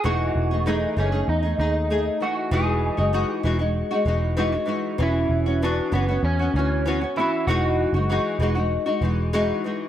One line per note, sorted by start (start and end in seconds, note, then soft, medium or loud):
0.04 0.29 E1 medium
0.04 0.50 E3 medium
0.04 0.51 A3 medium
0.04 0.51 D#4 medium
0.04 0.69 F#4 medium
0.04 0.50 G#4 medium
0.35 0.85 E1 medium
0.51 0.66 A3 soft
0.51 0.67 D#4 soft
0.51 0.66 G#4 soft
0.66 0.95 E3 medium
0.66 0.97 A3 medium
0.66 0.98 D#4 medium
0.66 0.97 D#4 medium
0.66 0.98 G#4 medium
0.97 1.22 F#1 medium
0.97 1.12 E3 soft
0.97 1.13 A3 medium
0.97 1.29 C#4 medium
0.97 1.12 D#4 medium
0.97 1.11 G#4 medium
1.12 1.45 A3 soft
1.12 1.43 D#4 medium
1.12 1.41 G#4 medium
1.28 1.53 E2 medium
1.28 1.58 D#4 medium
1.43 1.58 A3 soft
1.43 1.59 D#4 soft
1.43 1.59 G#4 medium
1.59 2.08 D#2 medium
1.59 1.89 A3 soft
1.59 2.23 D#4 loud
1.59 1.90 D#4 medium
1.59 1.91 G#4 medium
1.90 2.21 A3 medium
1.90 2.21 D#4 medium
1.90 2.22 G#4 medium
2.20 2.50 E3 soft
2.20 2.52 A3 medium
2.20 2.52 D#4 medium
2.20 2.53 F#4 medium
2.20 2.53 G#4 soft
2.51 2.89 E1 medium
2.51 2.98 E3 medium
2.51 2.99 G#3 medium
2.51 2.97 D#4 medium
2.51 2.96 F#4 medium
2.51 3.35 G#4 medium
2.97 3.23 F#1 medium
2.97 3.12 G#3 soft
2.97 3.13 D#4 soft
2.97 3.13 F#4 soft
3.13 3.42 E3 medium
3.13 3.43 G#3 medium
3.13 3.44 D#4 medium
3.13 3.45 F#4 medium
3.35 3.73 F#4 medium
3.43 3.82 E1 medium
3.43 3.60 E3 medium
3.43 3.60 G#3 medium
3.43 3.59 D#4 medium
3.43 3.58 F#4 medium
3.59 3.92 G#3 soft
3.59 3.91 D#4 soft
3.59 3.90 F#4 medium
3.91 4.05 G#3 soft
3.91 4.07 D#4 soft
3.91 4.06 F#4 medium
4.05 4.56 E1 medium
4.05 4.35 E3 medium
4.05 4.36 G#3 medium
4.05 4.37 D#4 medium
4.05 4.38 F#4 medium
4.37 4.53 E3 medium
4.37 4.53 G#3 medium
4.37 4.53 D#4 medium
4.37 4.51 F#4 medium
4.52 4.65 G#3 soft
4.52 4.66 D#4 soft
4.52 4.67 F#4 soft
4.66 4.97 E3 medium
4.66 4.98 G#3 medium
4.66 4.99 D#4 medium
4.66 4.99 F#4 medium
4.98 5.24 E1 medium
4.98 5.45 E3 medium
4.98 5.46 B3 medium
4.98 5.46 C#4 medium
4.98 5.45 F#4 medium
5.02 5.63 E4 medium
5.29 5.79 E1 medium
5.46 5.62 B3 soft
5.46 5.62 C#4 soft
5.46 5.61 F#4 soft
5.62 5.90 E3 medium
5.62 5.91 B3 medium
5.62 5.93 D4 medium
5.62 5.94 F#4 medium
5.92 6.17 F#1 medium
5.92 6.08 E3 medium
5.92 6.08 B3 medium
5.92 6.24 B3 medium
5.92 6.08 C#4 medium
5.92 6.07 F#4 medium
6.09 6.41 B3 soft
6.09 6.40 C#4 soft
6.09 6.38 F#4 medium
6.23 6.48 E2 medium
6.23 6.53 C#4 medium
6.39 6.56 B3 soft
6.39 6.55 C#4 soft
6.39 6.54 F#4 soft
6.54 7.04 D2 medium
6.54 6.84 E3 soft
6.54 6.86 B3 soft
6.54 7.19 C#4 medium
6.59 6.86 C#4 soft
6.59 6.87 F#4 medium
6.86 7.01 E3 medium
6.86 7.02 B3 medium
6.86 7.02 C#4 medium
6.86 7.00 F#4 medium
7.01 7.17 B3 soft
7.01 7.17 C#4 soft
7.01 7.16 F#4 soft
7.16 7.47 E3 medium
7.16 7.48 B3 medium
7.16 7.48 C#4 medium
7.16 7.46 E4 medium
7.16 7.49 F#4 medium
7.47 7.84 E1 medium
7.47 7.94 E3 medium
7.47 7.94 G#3 medium
7.47 7.95 D#4 medium
7.47 8.67 F#4 loud
7.47 7.93 F#4 medium
7.93 8.18 F#1 medium
7.93 8.10 D#4 soft
7.93 8.09 F#4 soft
7.97 8.09 G#3 soft
8.09 8.38 E3 medium
8.09 8.40 G#3 medium
8.09 8.41 D#4 medium
8.09 8.41 F#4 medium
8.39 8.77 E1 medium
8.39 8.55 E3 medium
8.39 8.56 G#3 medium
8.39 8.56 D#4 medium
8.39 8.54 F#4 medium
8.55 8.87 G#3 soft
8.55 8.86 D#4 soft
8.55 8.85 F#4 medium
8.86 9.01 G#3 soft
8.86 9.02 D#4 medium
8.86 9.02 F#4 medium
9.01 9.51 E1 medium
9.01 9.32 E3 medium
9.01 9.32 G#3 medium
9.01 9.34 D#4 medium
9.01 9.33 F#4 medium
9.33 9.63 E3 medium
9.33 9.64 G#3 medium
9.33 9.65 D#4 medium
9.33 9.64 F#4 medium
9.64 9.89 E3 medium
9.64 9.89 G#3 medium
9.64 9.89 D#4 medium
9.64 9.89 F#4 soft